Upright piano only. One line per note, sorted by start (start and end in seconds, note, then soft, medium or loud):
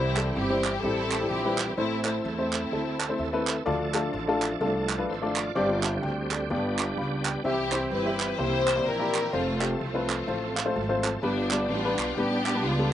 0.00 0.60 C3 medium
0.17 0.36 G3 medium
0.17 0.36 C4 medium
0.17 0.36 E4 medium
0.17 0.36 A4 medium
0.50 0.73 G3 medium
0.50 0.73 C4 medium
0.50 0.73 E4 medium
0.50 0.73 C5 medium
0.83 1.11 G3 medium
0.83 1.11 C4 medium
0.83 1.11 E4 medium
0.83 1.11 G4 medium
1.20 1.35 G3 medium
1.20 1.35 C4 medium
1.20 1.35 E4 medium
1.20 1.35 G4 medium
1.45 1.68 G3 medium
1.45 1.68 C4 medium
1.45 1.68 E4 medium
1.45 1.68 B4 medium
1.78 2.49 A2 medium
1.78 1.96 A3 medium
1.78 1.96 C4 medium
1.78 1.96 E4 medium
1.78 1.96 C5 medium
2.04 2.24 A3 medium
2.04 2.24 C4 medium
2.04 2.24 E4 medium
2.04 2.24 C5 medium
2.38 2.62 A3 medium
2.38 2.62 C4 medium
2.38 2.62 E4 medium
2.38 2.62 C5 medium
2.72 2.99 A3 medium
2.72 3.00 C4 medium
2.72 3.00 E4 medium
2.72 3.00 A4 medium
2.99 3.18 A5 medium
3.09 3.23 A3 medium
3.09 3.24 C4 medium
3.09 3.24 E4 medium
3.09 3.24 C5 medium
3.19 3.63 E5 medium
3.33 3.56 A3 loud
3.33 3.56 C4 medium
3.33 3.56 E4 medium
3.33 3.57 B4 medium
3.66 4.37 D3 medium
3.66 3.84 A3 loud
3.66 3.84 D4 medium
3.66 3.84 F4 medium
3.66 3.84 D5 loud
3.94 4.13 A3 medium
3.94 4.13 D4 medium
3.94 4.13 F4 medium
3.94 4.14 A4 loud
4.28 4.51 A3 loud
4.28 4.51 D4 medium
4.28 4.51 F4 loud
4.28 4.51 A4 loud
4.61 4.88 A3 medium
4.61 4.88 D4 medium
4.61 4.88 F4 medium
4.61 4.88 A4 loud
4.98 5.12 A3 medium
4.98 5.13 D4 medium
4.98 5.12 F4 medium
4.98 5.13 B4 medium
5.22 5.45 A3 medium
5.22 5.45 D4 medium
5.22 5.46 F4 medium
5.22 5.46 D5 loud
5.55 6.27 G2 medium
5.55 5.74 C4 loud
5.55 5.74 D4 medium
5.55 5.74 G4 loud
5.55 5.74 D5 loud
5.83 6.02 E5 medium
5.83 6.02 A5 medium
6.02 6.30 D5 medium
6.02 6.29 G5 medium
6.31 6.76 A4 medium
6.31 6.49 D5 medium
6.50 7.22 G2 medium
6.50 6.77 B3 medium
6.50 6.77 D4 medium
6.50 6.77 G4 medium
6.50 6.78 D5 medium
6.79 6.98 A5 medium
6.79 6.97 D6 medium
6.98 7.24 F5 medium
6.98 7.24 B5 medium
7.25 7.70 D5 soft
7.25 7.70 G5 medium
7.44 8.16 C3 medium
7.44 7.63 C4 medium
7.44 7.63 E4 medium
7.44 7.63 G4 medium
7.44 7.63 E5 medium
7.72 7.91 C4 medium
7.72 7.91 E4 medium
7.72 7.91 G4 medium
7.72 7.91 C5 medium
8.06 8.29 C4 medium
8.06 8.29 E4 medium
8.06 8.29 G4 medium
8.06 8.29 E5 medium
8.38 9.10 C3 medium
8.38 8.66 A#3 medium
8.38 8.66 E4 medium
8.38 8.66 G4 medium
8.38 8.66 C5 medium
8.76 8.90 A#3 medium
8.76 8.90 E4 medium
8.76 8.90 G4 medium
8.76 8.90 D5 medium
8.99 9.23 A#3 medium
8.99 9.23 E4 medium
8.99 9.23 G4 medium
8.99 9.23 D5 medium
9.33 9.51 A3 medium
9.33 9.51 C4 medium
9.33 9.52 F4 medium
9.33 9.52 C5 medium
9.60 9.80 A3 medium
9.60 9.80 C4 medium
9.60 9.80 F4 medium
9.60 9.80 G4 medium
9.94 10.18 A3 medium
9.94 10.18 C4 medium
9.94 10.18 F4 medium
9.94 10.18 B4 medium
10.27 10.55 A3 medium
10.27 10.55 C4 medium
10.27 10.55 F4 medium
10.27 10.55 C5 medium
10.56 10.74 F5 medium
10.65 10.79 A3 medium
10.65 10.80 C4 medium
10.65 10.80 F4 medium
10.65 10.80 C5 loud
10.75 11.01 A5 medium
10.89 11.13 A3 medium
10.89 11.12 C4 medium
10.89 11.12 F4 medium
10.89 11.13 C5 loud
11.03 11.21 A5 medium
11.23 11.94 G2 medium
11.23 11.41 G3 medium
11.23 11.41 B3 medium
11.23 11.41 D4 medium
11.23 11.41 B4 medium
11.51 11.70 G3 medium
11.51 11.70 B3 medium
11.51 11.70 D4 medium
11.51 11.70 D5 medium
11.84 12.07 G3 medium
11.84 12.08 B3 medium
11.84 12.08 D4 medium
11.84 12.08 B4 loud
12.18 12.45 G3 medium
12.18 12.45 B3 medium
12.18 12.45 D4 medium
12.18 12.45 B4 medium
12.55 12.69 G3 medium
12.55 12.69 B3 medium
12.55 12.69 D4 medium
12.55 12.69 B4 medium
12.78 12.93 G3 medium
12.78 12.93 B3 medium
12.78 12.93 D4 medium
12.78 12.93 A4 medium